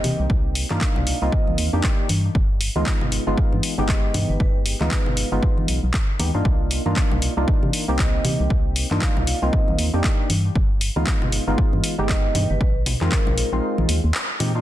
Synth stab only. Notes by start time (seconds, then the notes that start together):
Already playing: A#3 C4 D#4 G4
0.70 A#3 D4 D#4 F4
1.22 A#3 C4 D#4 F4
1.73 A#3 D4 D#4 G4
2.76 G#3 B3 D#4 F4
3.27 G#3 B3 D#4 F4
3.78 G#3 B3 D#4 G4
4.81 G#3 B3 D#4 F4
5.32 G#3 B3 D#4 F4
6.19 G#3 B3 D#4 G4
6.34 A#3 D4 D#4 F4
6.86 A#3 D4 D#4 F4
7.37 A#3 D4 D#4 F4
7.88 A#3 C4 D#4 G4
8.91 A#3 D4 D#4 F4
9.42 A#3 C4 D#4 F4
9.93 A#3 D4 D#4 G4
10.96 G#3 B3 D#4 F4
11.47 G#3 B3 D#4 F4
11.98 G#3 B3 D#4 G4
13.01 G#3 C4 D#4 F4
13.53 G#3 C4 D#4 F4
14.40 G#3 C4 D#4 G4
14.55 A#3 D4 D#4 F4